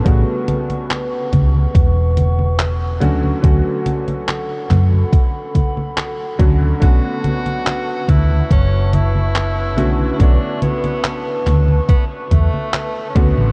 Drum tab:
HH |x-xxx-x-x-x-x-x-|x-xxx-x-x-x-x-x-|x-xxx-x-x-x-x-x-|x-xxx-x-x-x-x-x-|
CP |----x-------x---|----x-x-----x---|----x-------x---|----x-x-----x---|
CG |o-ooo-ooo-ooo-oo|o-ooo-ooo-ooo-oo|o-ooo-ooo-ooo-oo|o-ooo-ooo-ooo-oo|
BD |o-----o-o-------|o-------o-o---o-|o-----o-o-------|o-------o-o---o-|